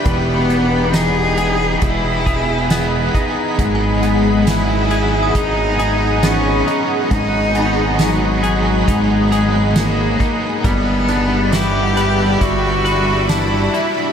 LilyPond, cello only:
\new Staff \with { instrumentName = "Cello" } { \time 4/4 \key gis \minor \tempo 4 = 68 b4 gis'4 e'4. r8 | gis4 e'4 dis'4 cis'8. r16 | dis'4 fis4 gis4 ais8. r16 | b4 g'4 fis'4 e'8. r16 | }